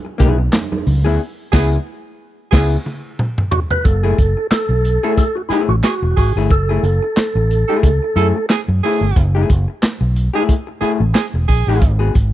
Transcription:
0.05 muted hollow-body jazz guitar stroke
0.18 fingered electric bass B1, hollow-body jazz guitar B3 E4 G#4, kick, closed hi-hat, muted conga, low conga
0.38 muted hollow-body jazz guitar stroke
0.53 muted hollow-body jazz guitar stroke, snare, clap, closed hi-hat, high conga
0.72 muted hollow-body jazz guitar stroke, high conga
0.87 fingered electric bass C#2, open hi-hat
1.04 fingered electric bass D2, hollow-body jazz guitar B3 E4 G#4
1.52 fingered electric bass C#2, hollow-body jazz guitar B3 E4 G#4, tenor saxophone G#4, kick, snare, crash
2.51 fingered electric bass C#2, hollow-body jazz guitar B3 E4 G#4, tenor saxophone G#4, kick, snare, crash
2.86 high tom
3.19 mid tom
3.38 mid tom
3.51 tonewheel organ F#4, floor tom
3.71 tonewheel organ B4, floor tom
3.84 fingered electric bass F#1, tonewheel organ A4, muted hollow-body jazz guitar stroke, kick, closed hi-hat
4.03 hollow-body jazz guitar A3 E4 G#4
4.17 fingered electric bass F#1, muted hollow-body jazz guitar stroke, kick, closed hi-hat
4.37 muted hollow-body jazz guitar stroke
4.51 tonewheel organ A4, muted fingered electric bass stroke, muted hollow-body jazz guitar stroke, snare, clap, closed hi-hat
4.69 fingered electric bass B1, muted hollow-body jazz guitar stroke
4.85 closed hi-hat
5.03 hollow-body jazz guitar A3 E4 G#4, tenor saxophone A4
5.18 tonewheel organ A4, kick, closed hi-hat
5.35 tonewheel organ F#4, muted hollow-body jazz guitar stroke
5.49 hollow-body jazz guitar A3 E4 G#4, tonewheel organ E4, tenor saxophone G#4, muted fingered electric bass stroke, closed hi-hat
5.69 fingered electric bass A1, tonewheel organ F#4, muted hollow-body jazz guitar stroke
5.83 tonewheel organ F#4, tenor saxophone G#4, muted hollow-body jazz guitar stroke, snare, clap, closed hi-hat
6.02 fingered electric bass E1, muted hollow-body jazz guitar stroke
6.17 fingered electric bass G#1, tonewheel organ F#4, tenor saxophone G#4, kick, open hi-hat
6.36 fingered electric bass G1, hollow-body jazz guitar A3 E4 G#4
6.50 fingered electric bass F#1, tonewheel organ A4, muted hollow-body jazz guitar stroke, kick, closed hi-hat
6.69 hollow-body jazz guitar A3 E4 G#4
6.83 fingered electric bass F#1, muted hollow-body jazz guitar stroke, closed hi-hat
7.02 muted hollow-body jazz guitar stroke
7.17 muted fingered electric bass stroke, muted hollow-body jazz guitar stroke, snare, clap, closed hi-hat
7.35 fingered electric bass A1, muted hollow-body jazz guitar stroke
7.51 closed hi-hat
7.68 hollow-body jazz guitar A3 E4 G#4, tenor saxophone A4
7.83 fingered electric bass C#2, kick, closed hi-hat
8.03 muted hollow-body jazz guitar stroke
8.16 fingered electric bass F#2, hollow-body jazz guitar A3 E4 G#4, tenor saxophone A4, closed hi-hat
8.36 muted hollow-body jazz guitar stroke
8.50 tenor saxophone G#4, muted hollow-body jazz guitar stroke, snare, clap, closed hi-hat
8.68 fingered electric bass F#2, muted hollow-body jazz guitar stroke
8.83 hollow-body jazz guitar A3 E4 G#4, tenor saxophone G#4, open hi-hat
9.01 fingered electric bass G1, muted hollow-body jazz guitar stroke
9.16 fingered electric bass F#1, muted hollow-body jazz guitar stroke, kick, closed hi-hat
9.35 hollow-body jazz guitar A3 E4 G#4
9.50 fingered electric bass F#1, muted hollow-body jazz guitar stroke, kick, closed hi-hat
9.68 muted hollow-body jazz guitar stroke
9.82 muted hollow-body jazz guitar stroke, muted fingered electric bass stroke, snare, clap, closed hi-hat
10.01 fingered electric bass B1, muted hollow-body jazz guitar stroke
10.16 closed hi-hat
10.34 hollow-body jazz guitar A3 E4 G#4, tenor saxophone G#4
10.49 kick, closed hi-hat
10.67 muted hollow-body jazz guitar stroke
10.81 hollow-body jazz guitar A3 E4 G#4, tenor saxophone G#4, muted fingered electric bass stroke, closed hi-hat
11.00 fingered electric bass A1, muted hollow-body jazz guitar stroke
11.14 tenor saxophone G#4, muted hollow-body jazz guitar stroke, snare, clap, closed hi-hat
11.34 fingered electric bass E1, muted hollow-body jazz guitar stroke
11.48 fingered electric bass A#1, tenor saxophone G#4, kick, open hi-hat
11.67 fingered electric bass A1, hollow-body jazz guitar A3 E4 G#4
11.81 fingered electric bass G#1, muted hollow-body jazz guitar stroke, kick, closed hi-hat
11.99 hollow-body jazz guitar B3 F#4 G#4
12.14 fingered electric bass G#1, muted hollow-body jazz guitar stroke, kick, closed hi-hat

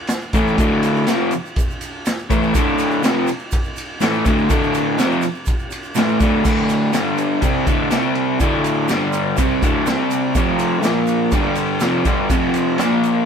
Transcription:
0.07 snare, ride, shaker
0.21 shaker
0.33 overdriven electric guitar A2 E3 A3, kick, ride, shaker
0.47 shaker
0.58 overdriven electric guitar D2 A2 D3, kick, ride, shaker
0.83 ride, shaker
0.96 shaker
1.07 overdriven electric guitar F2 C3 F3, snare, ride, shaker
1.31 ride, shaker
1.46 shaker
1.56 kick, ride, shaker
1.70 shaker
1.81 ride, shaker
2.05 snare, ride, shaker
2.19 shaker
2.30 overdriven electric guitar A2 E3 A3, kick, ride, shaker
2.43 shaker
2.54 overdriven electric guitar D2 A2 D3, kick, ride, shaker
2.78 ride, shaker
2.91 shaker
3.03 overdriven electric guitar F2 C3 F3, snare, ride, shaker
3.27 ride, shaker
3.39 shaker
3.51 kick, ride, shaker
3.64 shaker
3.76 ride, shaker
4.01 overdriven electric guitar A2 E3 A3, snare, ride, shaker
4.13 shaker
4.25 overdriven electric guitar D2 A2 D3, kick, ride, shaker
4.38 shaker
4.49 overdriven electric guitar D2 A2 D3, kick, ride, shaker
4.63 shaker
4.74 ride, shaker
4.98 overdriven electric guitar F2 C3 F3, snare, ride, shaker
5.11 shaker
5.22 ride, shaker
5.34 shaker
5.46 kick, ride, shaker
5.59 shaker
5.71 ride, shaker
5.83 shaker
5.95 overdriven electric guitar A2 E3 A3, snare, ride, shaker
6.08 shaker
6.20 overdriven electric guitar D2 A2 D3, kick, ride, shaker
6.45 overdriven electric guitar D2 A2 D3, kick, crash, shaker
6.69 ride, shaker
6.93 overdriven electric guitar G2 D3 G3, snare, ride, shaker
7.18 ride, shaker
7.42 overdriven electric guitar C3 G3 C4, kick, ride, shaker
7.67 overdriven electric guitar D2 A2 D3, kick, ride, shaker
7.91 overdriven electric guitar C3 G3 C4, snare, ride, shaker
8.15 ride
8.40 overdriven electric guitar D2 A2 D3, kick, ride, shaker
8.64 ride, shaker
8.88 overdriven electric guitar G2 D3 G3, snare, ride, shaker
9.13 ride, shaker
9.37 overdriven electric guitar C3 G3 C4, kick, ride, shaker
9.62 overdriven electric guitar D2 A2 D3, kick, ride, shaker
9.87 overdriven electric guitar C3 G3 C4, snare, ride, shaker
10.11 ride, shaker
10.35 overdriven electric guitar F2 C3 F3, kick, ride, shaker
10.59 ride, shaker
10.83 overdriven electric guitar A#2 F3 A#3, snare, ride, shaker
11.07 ride, shaker
11.31 overdriven electric guitar G2 D3 G3, kick, ride, shaker
11.55 ride, shaker
11.80 overdriven electric guitar F2 C3 F3, snare, ride, shaker
12.05 overdriven electric guitar G2 D3 G3, kick, ride, shaker
12.30 overdriven electric guitar F2 C3 F3, kick, ride, shaker
12.54 ride, shaker
12.78 overdriven electric guitar A#2 F3 A#3, snare, ride, shaker
13.03 ride, shaker

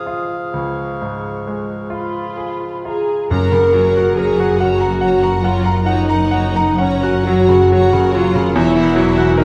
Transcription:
Already playing: grand piano C#2 G#2 G#3 F4 G#4, bassoon F3, clarinet G#4, cor anglais F5, flute section D#6
0.06 grand piano F4
0.53 grand piano C#2, flute section C#6
1.02 grand piano G#2
1.47 grand piano G#3
1.90 grand piano F4, viola section F4, french horn section F4, flute section B5
2.37 grand piano G#4
2.85 grand piano F4, french horn section G#4, viola section G#4, flute section A#5
3.30 double bass section F#1, cello section F#2, grand piano F#2, timpani F#2, violin section F#4 C#5 A#5, viola section A#4, french horn section A#4
3.52 grand piano C#3, violin section A#4 F#5
3.73 grand piano F#3, violin section F#4 C#5 A#5
3.95 grand piano F#4, violin section A#4 F#5
4.16 violin section F#4 C#5 A#5, french horn section G#4, viola section G#4, grand piano A#4
4.37 grand piano F#4, violin section A#4 F#5
4.58 viola section F#4, french horn section F#4, violin section F#4 C#5 A#5, grand piano F#5
4.80 violin section A#4 F#5, grand piano A#5
4.99 violin section F#4 C#5 A#5, grand piano F#5
5.21 violin section A#4 F#5, grand piano A#5
5.42 viola section F4, french horn section F4, violin section F#4 C#5 A#5, grand piano F#5
5.63 violin section A#4 F#5, grand piano A#5
5.82 french horn section D#4, viola section D#4, violin section F#4 C#5 A#5, grand piano F#5
6.05 violin section A#4 F#5
6.10 grand piano A#5
6.29 violin section F#4 C#5 A#5, grand piano F#5
6.54 violin section A#4 F#5, grand piano A#5
6.76 french horn section C#4, viola section C#4, violin section F#4 C#5 A#5, grand piano F#5
7.01 grand piano F#4, violin section A#4 F#5
7.24 grand piano F#3, violin section F#4 C#5 A#5, french horn section F#4, viola section F#4
7.48 grand piano C#3, violin section A#4 F#5
7.71 grand piano F#3, violin section F#4 C#5 A#5
7.92 grand piano C#3, violin section A#4 F#5
8.11 french horn section F4, viola section F4, violin section F#4 C#5 A#5
8.15 grand piano F#3
8.34 grand piano C#3, violin section A#4 F#5
8.54 double bass section E1, cello section E2, grand piano E2, french horn section E4, viola section E4, violin section F#4 C#5 E5
8.75 grand piano E3, violin section A#4 E5 F#5
8.96 grand piano F#3, violin section F#4 C#5 E5
9.15 grand piano F#4, violin section A#4 E5
9.20 violin section F#5
9.36 french horn section D#4, viola section D#4, violin section F#4 C#5 E5, grand piano A#4

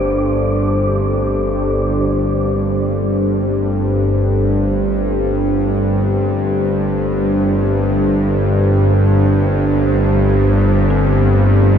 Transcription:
Already playing: synth drone G1 G2, synth texture D4 D5, analog synth pad D4 G4 A4 C5, synth bell A4
2.09 synth drone G1 G2
10.90 synth bell C4

